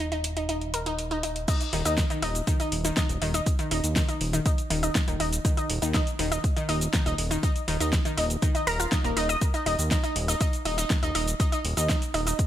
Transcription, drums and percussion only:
0.12 closed hi-hat
0.24 closed hi-hat
0.37 closed hi-hat
0.49 closed hi-hat
0.61 closed hi-hat
0.74 closed hi-hat
0.86 closed hi-hat
0.99 closed hi-hat
1.11 closed hi-hat
1.23 closed hi-hat
1.36 closed hi-hat
1.48 kick, closed hi-hat, crash, cabasa
1.61 closed hi-hat, cabasa
1.73 open hi-hat
1.85 closed hi-hat, cabasa
1.98 kick, snare, closed hi-hat, cabasa
2.10 closed hi-hat, cabasa
2.22 open hi-hat
2.35 closed hi-hat, cabasa
2.47 kick, closed hi-hat, cabasa
2.60 closed hi-hat, cabasa
2.72 open hi-hat
2.85 closed hi-hat, cabasa
2.97 kick, snare, closed hi-hat, cabasa
3.09 closed hi-hat, cabasa
3.22 open hi-hat
3.34 closed hi-hat, cabasa
3.46 kick, closed hi-hat, cabasa
3.59 closed hi-hat, cabasa
3.71 open hi-hat
3.84 closed hi-hat, cabasa
3.96 kick, snare, closed hi-hat, cabasa
4.09 closed hi-hat, cabasa
4.21 open hi-hat
4.33 closed hi-hat, cabasa
4.46 kick, closed hi-hat, cabasa
4.58 closed hi-hat, cabasa
4.70 open hi-hat
4.83 closed hi-hat, cabasa
4.95 kick, snare, closed hi-hat, cabasa
5.08 closed hi-hat, cabasa
5.20 open hi-hat
5.33 closed hi-hat, cabasa
5.45 kick, closed hi-hat, cabasa
5.57 closed hi-hat, cabasa
5.70 open hi-hat
5.82 closed hi-hat, cabasa
5.94 kick, snare, closed hi-hat, cabasa
6.07 closed hi-hat, cabasa
6.19 open hi-hat
6.32 closed hi-hat, cabasa
6.44 kick, closed hi-hat, cabasa
6.57 closed hi-hat, cabasa
6.69 open hi-hat
6.81 closed hi-hat, cabasa
6.94 kick, snare, closed hi-hat, cabasa
7.06 closed hi-hat, cabasa
7.18 open hi-hat
7.31 closed hi-hat, cabasa
7.43 kick, closed hi-hat, cabasa
7.56 closed hi-hat, cabasa
7.68 open hi-hat
7.80 closed hi-hat, cabasa
7.93 kick, snare, closed hi-hat, cabasa
8.05 closed hi-hat, cabasa
8.18 open hi-hat
8.30 closed hi-hat, cabasa
8.42 kick, closed hi-hat, cabasa
8.55 closed hi-hat, cabasa
8.67 open hi-hat
8.80 closed hi-hat, cabasa
8.92 kick, snare, closed hi-hat, cabasa
9.04 closed hi-hat, cabasa
9.17 open hi-hat
9.29 closed hi-hat, cabasa
9.41 kick, closed hi-hat, cabasa
9.54 closed hi-hat, cabasa
9.66 open hi-hat
9.79 closed hi-hat, cabasa
9.91 kick, snare, closed hi-hat, cabasa
10.04 closed hi-hat, cabasa
10.16 open hi-hat
10.28 closed hi-hat, cabasa
10.41 kick, closed hi-hat, cabasa
10.53 closed hi-hat, cabasa
10.65 open hi-hat
10.78 closed hi-hat, cabasa
10.90 kick, snare, closed hi-hat, cabasa
11.03 closed hi-hat, cabasa
11.15 open hi-hat
11.28 closed hi-hat, cabasa
11.40 kick, closed hi-hat, cabasa
11.52 closed hi-hat, cabasa
11.65 open hi-hat
11.77 closed hi-hat, cabasa
11.89 kick, snare, closed hi-hat, cabasa
12.02 closed hi-hat, cabasa
12.14 open hi-hat
12.27 closed hi-hat, cabasa
12.39 kick, closed hi-hat, cabasa

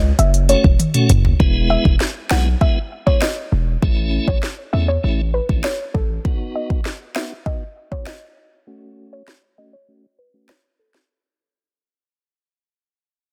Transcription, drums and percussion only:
0.19 closed hi-hat
0.34 closed hi-hat
0.49 closed hi-hat
0.64 kick
0.79 closed hi-hat, high tom
0.94 closed hi-hat, mid tom
1.09 closed hi-hat, mid tom
1.25 floor tom
1.40 kick
1.85 kick
2.00 snare
2.31 snare
2.61 kick
3.07 kick
3.22 snare
3.83 kick
4.28 kick
4.43 snare
5.49 kick
5.64 snare
5.95 kick
6.25 kick
6.70 kick
6.85 snare
7.16 snare
7.46 kick
7.92 kick
8.07 snare
9.28 cross-stick, snare
10.49 cross-stick, snare
10.94 snare

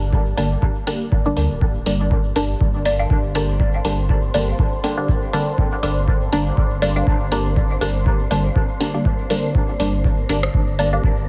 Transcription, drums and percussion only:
0.13 kick
0.38 open hi-hat
0.62 kick
0.87 open hi-hat
1.12 kick
1.37 open hi-hat
1.61 kick
1.86 open hi-hat
2.11 kick
2.36 open hi-hat
2.61 kick
2.85 open hi-hat
3.10 kick
3.35 open hi-hat
3.60 kick
3.85 open hi-hat
4.09 kick
4.34 open hi-hat
4.59 kick
4.84 open hi-hat
5.09 kick
5.33 open hi-hat
5.58 kick
5.83 open hi-hat
6.08 kick
6.32 open hi-hat
6.57 kick
6.82 open hi-hat
7.07 kick
7.32 open hi-hat
7.56 kick
7.81 open hi-hat
8.06 kick
8.31 open hi-hat
8.56 kick
8.81 open hi-hat
9.05 kick
9.30 open hi-hat
9.55 kick
9.80 open hi-hat
10.04 kick
10.29 open hi-hat
10.43 cross-stick
10.54 kick
10.79 open hi-hat
11.04 kick

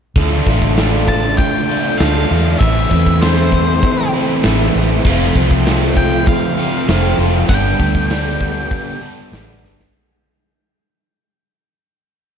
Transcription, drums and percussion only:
0.16 kick, open hi-hat
0.47 kick
0.62 kick
0.77 snare, open hi-hat
1.08 kick
1.38 kick, open hi-hat
2.00 snare, open hi-hat
2.61 kick, open hi-hat
2.91 kick
3.06 kick
3.22 snare, open hi-hat
3.52 kick
3.83 kick, open hi-hat
4.43 snare, open hi-hat
5.05 kick, crash
5.36 kick
5.51 kick
5.66 snare, open hi-hat
5.97 kick
6.27 kick, open hi-hat
6.88 snare, open hi-hat
7.49 kick, open hi-hat
7.80 kick
7.95 kick
8.10 snare, open hi-hat
8.41 kick
8.71 kick, open hi-hat
9.33 snare, open hi-hat
9.64 snare
9.80 snare

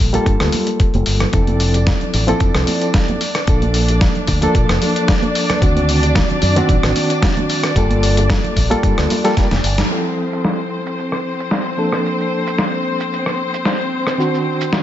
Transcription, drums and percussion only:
0.14 closed hi-hat, high conga
0.26 kick, closed hi-hat
0.40 cross-stick, closed hi-hat
0.52 open hi-hat, high conga, low conga
0.67 closed hi-hat
0.80 kick, closed hi-hat
0.94 closed hi-hat, high conga
1.06 open hi-hat
1.20 cross-stick, closed hi-hat, low conga
1.33 kick, closed hi-hat, tambourine
1.47 closed hi-hat, high conga
1.60 open hi-hat, tambourine
1.74 closed hi-hat, tambourine, high bongo
1.86 kick, snare, closed hi-hat, tambourine, high conga
2.01 closed hi-hat, low conga
2.14 open hi-hat, tambourine, high bongo
2.28 closed hi-hat, tambourine, high conga
2.40 kick, closed hi-hat, tambourine, low conga
2.55 cross-stick, closed hi-hat
2.67 open hi-hat, tambourine, high conga
2.81 closed hi-hat, tambourine
2.94 kick, snare, closed hi-hat
3.08 closed hi-hat, high conga, low conga
3.21 open hi-hat, tambourine
3.35 cross-stick, closed hi-hat, tambourine
3.47 kick, closed hi-hat, tambourine
3.62 closed hi-hat, high conga
3.74 open hi-hat, tambourine
3.88 closed hi-hat, tambourine, high bongo
4.01 kick, snare, closed hi-hat, tambourine, high conga
4.15 closed hi-hat, low conga
4.27 kick, open hi-hat, tambourine
4.42 closed hi-hat, tambourine, high conga
4.55 kick, closed hi-hat, tambourine
4.69 cross-stick, closed hi-hat
4.81 open hi-hat, tambourine, high bongo, high conga, low conga
4.96 closed hi-hat, tambourine
5.08 kick, snare, closed hi-hat, tambourine
5.22 closed hi-hat, high conga
5.35 open hi-hat, tambourine
5.49 cross-stick, closed hi-hat, tambourine, low conga
5.62 kick, closed hi-hat, tambourine
5.76 closed hi-hat, high conga
5.89 open hi-hat, tambourine
6.03 closed hi-hat, tambourine, high bongo
6.15 kick, snare, closed hi-hat, tambourine, high conga
6.30 closed hi-hat, low conga
6.42 open hi-hat, tambourine, high bongo
6.56 closed hi-hat, tambourine, high conga
6.69 kick, closed hi-hat, tambourine, low conga
6.83 cross-stick, closed hi-hat
6.96 open hi-hat, tambourine, high conga
7.10 closed hi-hat, tambourine
7.22 kick, snare, closed hi-hat, tambourine
7.37 closed hi-hat, high conga, low conga
7.49 open hi-hat, tambourine
7.64 cross-stick, closed hi-hat, tambourine
7.76 kick, closed hi-hat, tambourine
7.90 closed hi-hat, high conga
8.03 open hi-hat, tambourine
8.17 closed hi-hat, tambourine, high bongo
8.30 kick, snare, closed hi-hat, tambourine, high conga
8.44 closed hi-hat, low conga
8.56 kick, open hi-hat, tambourine, high bongo
8.71 closed hi-hat, tambourine, high conga
8.83 kick, closed hi-hat, tambourine
8.98 cross-stick, closed hi-hat
9.10 open hi-hat, tambourine, high bongo, high conga, low conga
9.24 snare, closed hi-hat, tambourine
9.37 kick, snare, closed hi-hat, tambourine
9.51 snare, closed hi-hat, high conga
9.64 open hi-hat, tambourine
9.78 snare, closed hi-hat, tambourine, low conga
9.91 crash, shaker
10.06 shaker
10.33 shaker
10.45 snare, shaker
10.59 shaker
10.86 shaker
10.99 shaker
11.12 cross-stick, shaker
11.40 shaker
11.51 snare, shaker
11.66 shaker
11.92 cross-stick, shaker
12.06 shaker
12.20 shaker
12.47 shaker
12.58 snare, shaker
12.74 shaker
13.00 shaker
13.13 shaker
13.26 cross-stick, shaker
13.54 shaker
13.65 snare, shaker
13.80 shaker
14.07 cross-stick, shaker
14.20 shaker
14.34 shaker
14.61 shaker
14.73 snare, shaker

